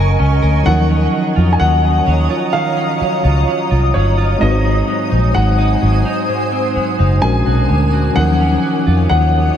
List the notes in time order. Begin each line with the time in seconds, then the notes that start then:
Already playing: F#1 F3 F#3 A#3 C#4 A#4 D#5 G#5 C#6
0.19 C#2 C#4
0.42 D2 A#4
0.63 D#2 D#3 F#3 C#4 D#4 C#5 F#5 A#5 D#6
0.68 F3 A#4
0.89 C#4
1.13 F#3
1.36 F2 F4
1.53 G#5
1.60 D#2 F#3 F#5
2.07 D#2 F#3
2.30 F4
2.53 D#3 F5
2.77 C#4
3.00 F#3, muted fingered electric bass stroke
3.24 C#2 F4
3.47 F#3
3.71 C2 F4
3.94 G1 F#3 C#5
4.18 F4
4.38 G#1 G#2 G#3 C4 D#4 C5 D#5 G#5
4.43 F#4 B4
4.51 C5
4.65 C4
4.88 F#3
5.12 A#1 D#4
5.35 G#1 F#3 F#5
5.58 D#4
5.82 G#1 F#3
6.05 D#4
6.29 G#2
6.52 C4
6.76 F#3, muted fingered electric bass stroke
6.99 F#1 D#4
7.21 A#1 A#2 G#3 C#4 D4 F#4 A#4 G#5
7.46 B1 F#4
7.69 D2 G#3
7.93 F#4
8.13 D#2 D#3 F#3 C#4 D#4 C#5 D#5 F#5 D#6
8.18 F3 A#4
8.40 C#4
8.63 F#3
8.87 F2 F4
9.09 D#2 F#3 F#5